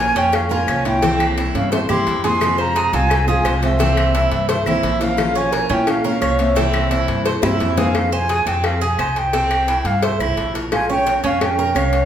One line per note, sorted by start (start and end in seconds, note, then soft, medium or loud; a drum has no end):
0.00 0.31 F3 medium
0.00 0.32 A#3 medium
0.00 0.32 C#4 medium
0.00 0.17 F4 medium
0.00 0.32 F4 medium
0.00 0.16 A#4 medium
0.00 0.20 G#5 loud
0.15 0.64 F2 loud
0.15 0.50 C#4 medium
0.15 0.34 E4 medium
0.15 0.36 G5 loud
0.15 cowbell medium
0.33 0.51 C#4 medium
0.33 0.51 F5 medium
0.33 muted steel-string acoustic guitar stroke medium
0.33 cowbell loud
0.33 claves medium
0.49 0.67 A#3 medium
0.49 0.67 C#4 medium
0.49 0.67 F4 medium
0.49 0.83 F4 medium
0.49 0.68 A#4 medium
0.49 0.84 G#5 loud
0.67 1.48 C2 medium
0.67 0.84 F3 soft
0.67 0.85 A#3 medium
0.67 0.84 C#4 medium
0.67 0.84 F4 medium
0.67 1.02 C#5 medium
0.67 cowbell medium
0.67 claves medium
0.85 1.02 A#3 soft
0.85 1.02 C#4 medium
0.85 1.25 E4 medium
0.85 1.02 F4 medium
0.85 1.25 G5 loud
0.85 cowbell medium
1.02 1.71 C3 medium
1.02 1.71 E3 medium
1.02 1.71 A#3 medium
1.02 1.36 C4 medium
1.02 1.72 C4 medium
1.02 1.72 E4 medium
1.02 cowbell loud
1.20 cowbell medium
1.20 claves medium
1.38 1.71 E4 medium
1.38 cowbell medium
1.54 1.87 G2 loud
1.54 1.71 C#4 medium
1.54 1.72 F5 loud
1.54 cowbell medium
1.72 1.77 C4 medium
1.72 1.88 C5 medium
1.72 1.79 E5 medium
1.72 muted steel-string acoustic guitar stroke medium
1.72 cowbell loud
1.89 2.05 G2 medium
1.89 2.06 E3 medium
1.89 2.06 A#3 medium
1.89 2.06 C4 medium
1.89 2.06 E4 medium
1.89 2.23 E4 medium
1.89 2.21 G4 medium
1.89 2.22 C6 loud
1.89 claves medium
2.07 2.87 F2 medium
2.07 2.23 E3 medium
2.07 2.24 A#3 soft
2.07 2.23 C4 medium
2.07 2.23 E4 medium
2.07 cowbell medium
2.24 2.41 E3 medium
2.24 2.41 A#3 medium
2.24 2.41 C4 medium
2.24 2.41 E4 medium
2.24 2.57 G#4 medium
2.24 2.59 G#4 medium
2.24 2.62 C6 loud
2.24 cowbell medium
2.41 3.09 C3 medium
2.41 3.10 F3 medium
2.41 3.10 G#3 medium
2.41 3.11 C4 medium
2.41 3.10 F4 medium
2.41 cowbell loud
2.41 claves medium
2.58 2.93 F4 medium
2.58 2.75 C5 medium
2.58 2.96 A#5 loud
2.76 2.93 G#4 medium
2.76 cowbell medium
2.93 3.41 C2 loud
2.93 3.27 C4 medium
2.93 3.27 F4 medium
2.93 3.29 G#5 loud
2.93 cowbell medium
3.10 muted steel-string acoustic guitar stroke medium
3.10 cowbell loud
3.10 claves medium
3.28 3.44 F3 medium
3.28 3.45 G#3 medium
3.28 3.45 C4 medium
3.28 3.44 F4 medium
3.28 3.60 F4 medium
3.28 3.45 G#4 medium
3.28 3.61 G#5 loud
3.45 4.26 C2 loud
3.45 3.62 F3 medium
3.45 3.62 G#3 medium
3.45 3.62 C4 medium
3.45 3.61 F4 medium
3.45 3.79 C5 medium
3.45 cowbell medium
3.45 claves medium
3.62 3.79 F3 medium
3.62 3.80 G#3 medium
3.62 4.63 C4 medium
3.62 3.79 C4 medium
3.62 3.79 F4 medium
3.62 4.63 E5 medium
3.62 cowbell medium
3.79 4.48 C3 medium
3.79 4.48 E3 medium
3.79 4.49 A#3 medium
3.79 4.14 C4 medium
3.79 4.48 C4 medium
3.79 4.48 E4 medium
3.79 cowbell loud
3.97 cowbell medium
3.97 claves medium
4.15 4.48 E4 medium
4.15 cowbell medium
4.32 4.64 G2 loud
4.32 cowbell medium
4.49 4.66 C5 medium
4.49 muted steel-string acoustic guitar stroke medium
4.49 cowbell loud
4.66 4.82 C2 medium
4.66 4.82 E3 medium
4.66 4.83 A#3 medium
4.66 4.83 C4 medium
4.66 5.02 C4 medium
4.66 4.83 E4 medium
4.66 5.00 E4 medium
4.66 5.04 E5 medium
4.66 claves medium
4.83 5.64 A#1 medium
4.83 5.00 E3 medium
4.83 5.00 A#3 medium
4.83 5.00 C4 medium
4.83 5.00 E4 medium
4.83 cowbell medium
5.01 5.17 E3 medium
5.01 5.17 A#3 medium
5.01 5.18 C4 medium
5.01 5.35 C#4 medium
5.01 5.18 E4 medium
5.01 5.35 A#4 medium
5.01 5.39 F5 loud
5.01 cowbell medium
5.17 5.86 F3 medium
5.17 5.87 A#3 medium
5.17 5.87 C#4 medium
5.17 5.87 F4 medium
5.17 cowbell loud
5.17 claves medium
5.35 5.70 F4 loud
5.35 5.52 C#5 medium
5.35 5.71 G#5 loud
5.52 5.69 A#4 medium
5.52 cowbell medium
5.69 6.18 A#2 loud
5.69 6.03 C#4 medium
5.69 5.87 E4 medium
5.69 5.91 G5 medium
5.69 cowbell medium
5.87 6.04 C#4 medium
5.87 6.06 F5 medium
5.87 muted steel-string acoustic guitar stroke medium
5.87 cowbell loud
5.87 claves medium
6.04 6.21 A#3 medium
6.04 6.21 C#4 medium
6.04 6.39 C#4 medium
6.04 6.21 F4 medium
6.04 6.21 A#4 medium
6.04 6.43 F5 medium
6.21 7.03 C2 medium
6.21 6.38 F3 medium
6.21 6.39 A#3 medium
6.21 6.38 C#4 medium
6.21 6.37 F4 medium
6.21 6.55 C#5 medium
6.21 cowbell medium
6.21 claves medium
6.39 6.56 A#3 medium
6.39 7.42 C4 medium
6.39 6.56 C#4 medium
6.39 6.56 F4 medium
6.39 7.21 E5 medium
6.39 cowbell medium
6.55 7.24 C3 medium
6.55 7.24 E3 medium
6.55 7.25 A#3 medium
6.55 6.90 C4 medium
6.55 7.25 C4 medium
6.55 7.25 E4 loud
6.55 cowbell loud
6.74 cowbell medium
6.74 claves medium
6.91 7.25 E4 medium
6.91 cowbell medium
7.08 7.41 G2 medium
7.08 cowbell medium
7.25 7.42 C5 medium
7.25 muted steel-string acoustic guitar stroke medium
7.25 cowbell loud
7.42 7.59 G2 medium
7.42 7.59 E3 medium
7.42 7.59 A#3 medium
7.42 7.60 C4 medium
7.42 7.75 C4 medium
7.42 7.59 E4 medium
7.42 7.77 E4 medium
7.42 7.80 E5 medium
7.42 high bongo medium
7.42 claves medium
7.60 8.41 F2 loud
7.60 7.77 E3 soft
7.60 7.77 A#3 soft
7.60 7.77 C4 medium
7.60 7.76 E4 medium
7.60 cowbell medium
7.77 7.95 E3 medium
7.77 7.95 A#3 medium
7.77 8.12 C4 medium
7.77 7.95 C4 medium
7.77 7.94 E4 medium
7.77 7.94 G#4 medium
7.77 8.15 F5 loud
7.77 cowbell medium
7.77 low bongo medium
7.95 cowbell loud
7.95 claves medium
8.12 8.47 F4 loud
8.12 8.29 C5 medium
8.12 8.50 G#5 loud
8.29 8.46 G#4 medium
8.29 cowbell medium
8.46 8.95 F2 loud
8.46 8.80 C4 medium
8.46 8.65 E4 medium
8.46 8.67 G5 medium
8.46 cowbell medium
8.64 8.81 C4 medium
8.64 8.85 F5 medium
8.64 cowbell loud
8.64 claves medium
8.81 9.16 F4 medium
8.81 8.98 G#4 medium
8.81 9.20 G#5 medium
8.98 9.80 C2 medium
8.98 9.33 C5 medium
8.98 cowbell medium
8.98 claves medium
9.16 9.85 E4 medium
9.16 9.88 G5 loud
9.16 cowbell medium
9.33 9.67 C4 medium
9.33 cowbell loud
9.51 cowbell medium
9.51 claves medium
9.68 10.02 E4 medium
9.68 cowbell medium
9.85 10.17 G2 loud
9.85 10.02 C#4 medium
9.85 10.05 F5 loud
9.85 cowbell medium
10.02 10.55 C4 medium
10.02 10.20 C5 medium
10.02 10.55 E5 medium
10.02 cowbell loud
10.19 10.36 C2 medium
10.19 10.54 E4 medium
10.19 claves medium
10.37 11.18 A#1 medium
10.37 cowbell medium
10.55 10.89 A#4 medium
10.55 cowbell medium
10.72 10.89 F4 medium
10.72 10.89 G#5 loud
10.72 cowbell loud
10.72 claves medium
10.90 11.22 C#4 medium
10.90 11.06 C#5 medium
10.90 11.22 G5 loud
11.07 11.23 A#4 medium
11.07 cowbell medium
11.24 11.72 F2 loud
11.24 11.57 C#4 medium
11.24 11.40 C#4 medium
11.24 11.44 F5 loud
11.24 cowbell medium
11.41 11.74 C#4 medium
11.41 11.79 G5 loud
11.41 cowbell loud
11.41 claves medium
11.59 11.75 A#4 medium
11.75 12.05 C2 loud
11.75 12.05 C#4 medium
11.75 12.05 C#5 medium
11.75 12.05 F5 medium
11.75 cowbell medium
11.75 claves medium
11.93 cowbell medium